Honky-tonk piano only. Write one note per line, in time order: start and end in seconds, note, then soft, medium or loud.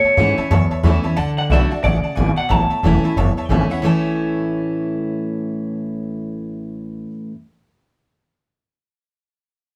0.04 0.12 C#5 medium
0.04 0.12 E5 medium
0.04 0.13 A5 medium
0.17 0.30 C#5 medium
0.17 0.30 E5 medium
0.17 0.30 F#5 medium
0.37 0.45 C#5 medium
0.37 0.45 E5 medium
0.37 0.46 A5 medium
0.51 0.63 C#5 loud
0.51 0.63 E5 loud
0.51 0.63 A5 loud
0.71 0.79 C#5 medium
0.71 0.79 E5 medium
0.71 0.79 A5 medium
0.83 0.96 C#5 loud
0.83 0.96 E5 medium
0.83 0.96 B5 loud
1.03 1.11 C#5 medium
1.03 1.12 E5 medium
1.03 1.12 A5 medium
1.16 1.29 D5 loud
1.16 1.29 F#5 loud
1.16 1.29 A5 loud
1.38 1.45 D5 medium
1.38 1.45 F#5 medium
1.38 1.45 A5 medium
1.50 1.62 D5 medium
1.50 1.62 F#5 medium
1.50 1.63 B5 medium
1.71 1.79 D5 medium
1.71 1.79 F#5 medium
1.71 1.79 A5 medium
1.83 1.95 D5 loud
1.83 1.96 F#5 loud
1.83 1.96 A5 loud
2.03 2.11 D5 medium
2.03 2.11 F#5 medium
2.03 2.12 A5 medium
2.15 2.28 D5 medium
2.15 2.28 F#5 medium
2.15 2.29 G#5 medium
2.36 2.44 D5 medium
2.36 2.44 F#5 medium
2.36 2.45 A5 medium
2.49 2.62 C#5 medium
2.49 2.62 E5 medium
2.49 2.62 A5 loud
2.70 2.78 C#5 medium
2.70 2.78 E5 medium
2.70 2.78 A5 medium
2.83 2.95 C#5 medium
2.83 2.95 E5 medium
2.83 2.96 A5 medium
3.04 3.11 C#5 medium
3.04 3.11 E5 medium
3.04 3.12 A5 loud
3.17 3.29 C#5 loud
3.17 3.29 E5 loud
3.17 3.29 A5 loud
3.37 3.45 C#5 medium
3.37 3.45 E5 medium
3.37 3.45 A5 medium
3.51 3.62 C#5 medium
3.51 3.63 E5 medium
3.51 3.63 A5 loud
3.70 3.78 C#5 medium
3.70 3.78 E5 medium
3.70 3.78 F#5 loud
3.82 7.05 C#5 medium
3.82 7.07 E5 medium
3.82 7.09 A5 loud